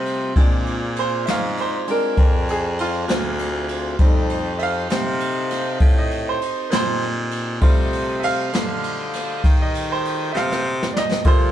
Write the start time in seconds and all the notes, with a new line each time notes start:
Already playing: C3 G3 A3 C4 F4 D#5
0.06 ride
0.36 A#2 G#3 C4 D4 F4 G#4, kick, ride
0.66 ride
0.96 C5, ride
1.26 G#2 E5, snare, ride
1.30 F5
1.57 C5, ride
1.87 G#3 C4 D4 A#4, ride
2.17 F2, kick, ride
2.49 G#4, ride
2.79 F4, ride
3.08 D2, snare, ride
3.39 ride
3.69 ride
3.99 F2 G3 A3 C4 D#4 G4 A4, kick, ride
4.29 ride
4.59 E5, ride
4.63 F5
4.90 C3, snare, ride
5.20 ride
5.51 snare, ride
5.80 A2, kick, ride
5.99 D#5
6.11 ride
6.29 C5
6.42 ride
6.70 A#2 B4, snare, ride
6.75 C5
7.02 ride
7.31 ride
7.61 C3 G3 A3 F4 G4 A4 C5 D#5, kick, ride
7.93 ride
8.20 E5, ride
8.24 F5
8.53 D3, snare, ride
8.84 ride
9.13 snare, ride
9.44 D#3, kick, ride
9.62 D#5
9.75 ride
9.92 C5
10.05 ride
10.32 C3 E5
10.37 F5, snare
10.52 snare
10.83 snare
10.93 D5, snare
10.98 D#5
11.12 snare
11.24 A#2 D3 G3 A3 A#3 F4 A4 C5, kick, ride